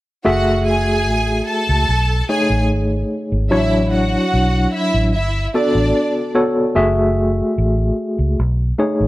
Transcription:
0.25 fingered electric bass F#1, tine electric piano A3 F#4 G#4 E5, string section F#4 F#5
0.66 string section G#4 G#5
1.08 fingered electric bass A1
1.47 string section A4 A5
1.69 fingered electric bass C#2
1.89 fingered electric bass B1
2.29 tine electric piano A3 D#4 G#4 C#5, string section G#4 G#5
2.50 fingered electric bass A1
2.71 fingered electric bass G#1
3.32 fingered electric bass G#1
3.51 fingered electric bass A1, tine electric piano F#3 D4 E4 C#5, string section E4 E5
3.92 string section F#4 F#5
4.34 fingered electric bass B1
4.73 string section E4 E5
4.94 fingered electric bass A1
5.14 fingered electric bass G1, string section E4 E5
5.54 tine electric piano B3 F#4 A4 D5, string section D4 D5
5.75 fingered electric bass A1
6.35 tine electric piano B3 F#4 A4 C#5
6.75 fingered electric bass F#1, tine electric piano A3 F#4 G#4 E5
7.58 fingered electric bass A1
8.19 fingered electric bass C#2
8.39 fingered electric bass B1
8.79 tine electric piano A3 D#4 G#4 C#5
9.00 fingered electric bass A1

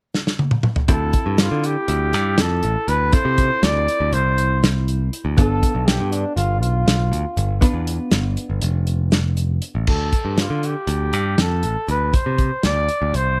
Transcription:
0.15 snare
0.27 snare
0.39 high tom
0.51 mid tom
0.63 mid tom
0.76 floor tom
0.88 picked electric bass D2, hollow-body jazz guitar C4 E4 F4 A4, trumpet A4, kick, closed hi-hat
1.13 kick, closed hi-hat
1.26 picked electric bass G2
1.38 trumpet F4, snare, closed hi-hat
1.51 picked electric bass D3
1.64 trumpet G4, closed hi-hat
1.88 picked electric bass D2, closed hi-hat
2.13 picked electric bass G2, snare, closed hi-hat
2.38 picked electric bass F2, trumpet A4, snare, closed hi-hat
2.63 picked electric bass A1, closed hi-hat
2.88 picked electric bass D2, trumpet B4, closed hi-hat
3.12 hollow-body jazz guitar C4 E4 F4 A4, trumpet C5, kick, closed hi-hat
3.25 picked electric bass C3
3.38 kick, closed hi-hat
3.63 picked electric bass D2, trumpet D5, snare, closed hi-hat
3.88 closed hi-hat
4.00 picked electric bass D2
4.13 picked electric bass C2, trumpet C5, closed hi-hat
4.38 closed hi-hat
4.64 snare, closed hi-hat
4.88 closed hi-hat
5.13 closed hi-hat
5.25 picked electric bass D2
5.37 picked electric bass G1, hollow-body jazz guitar B3 D4 F4 A4, trombone A4, kick, closed hi-hat
5.63 kick, closed hi-hat
5.75 picked electric bass B1
5.86 trombone G4, snare, closed hi-hat
6.00 picked electric bass G2
6.12 trombone D4, closed hi-hat
6.36 picked electric bass G1, trombone F4, closed hi-hat
6.61 picked electric bass B1, trombone F4, closed hi-hat
6.86 picked electric bass B1, snare, closed hi-hat
7.12 picked electric bass D2, closed hi-hat
7.37 picked electric bass G1, closed hi-hat
7.61 hollow-body jazz guitar B3 D4 F4 B4, kick, closed hi-hat
7.73 picked electric bass E2
7.87 closed hi-hat
8.12 picked electric bass G1, snare, closed hi-hat
8.37 closed hi-hat
8.50 picked electric bass G1
8.62 picked electric bass F1, closed hi-hat
8.87 closed hi-hat
9.12 snare, closed hi-hat
9.37 closed hi-hat
9.62 closed hi-hat
9.75 picked electric bass A1
9.87 picked electric bass D2, trumpet A4, kick, crash
10.13 kick, closed hi-hat
10.25 picked electric bass G2
10.38 trumpet F4, snare, closed hi-hat
10.50 picked electric bass D3
10.63 trumpet G4, closed hi-hat
10.87 picked electric bass D2, closed hi-hat
11.13 picked electric bass G2, closed hi-hat
11.38 picked electric bass F2, trumpet A4, snare, closed hi-hat
11.63 picked electric bass A1, closed hi-hat
11.88 picked electric bass D2, trumpet B4, closed hi-hat
12.13 trumpet C5, kick, closed hi-hat
12.26 picked electric bass C3
12.38 kick, closed hi-hat
12.63 picked electric bass D2, trumpet D5, snare, closed hi-hat
12.89 closed hi-hat
13.02 picked electric bass D2
13.13 picked electric bass C2, trumpet C5, closed hi-hat

